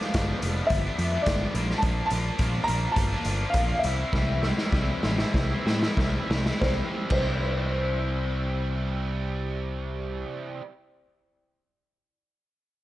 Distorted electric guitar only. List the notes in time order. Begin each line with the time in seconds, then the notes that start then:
Already playing: G2 D3
0.01 G3 B3 D4 G4
0.15 G2 D3 G3 B3 D4 G4
0.43 G3 B3 D4 G4
0.85 G3 B3 D4 G4
0.99 G3 B3 D4 G4
1.14 G3 B3 D4 G4
1.27 G2 D3 G3 B3 D4 G4
1.54 A#2 F3 A#3 D4 F4
1.70 A#3 D4 F4
1.83 A#2 F3 A#3 D4 F4
2.11 F3 A#3 D4 F4
2.26 A#3 D4 F4
2.40 A#2 F3 A#3 D4 F4
2.68 F3 A#3 D4 F4
3.11 A#3 D4 F4
3.25 F3 A#3 D4 F4
3.39 A#3 D4 F4
3.54 A#2 F3 A#3 D4 F4
3.84 C3 E3 G3 C4 E4
3.99 G3 C4 E4
4.12 C3 E3 G3 C4 E4
4.43 E3 G3 C4 E4
4.58 G3 C4 E4
4.72 C3 E3 G3 C4 E4
5.03 E3 G3 C4 E4
5.49 G3 C4 E4
5.63 E3 G3 C4 E4
5.81 G3 C4 E4
5.97 C3 E3 G3 C4 E4
6.29 E3 G3 C4 E4
6.44 G3 C4 E4
6.61 C3 E3 G3 C4
6.65 E4
7.10 C3 E3 G3 C4 E4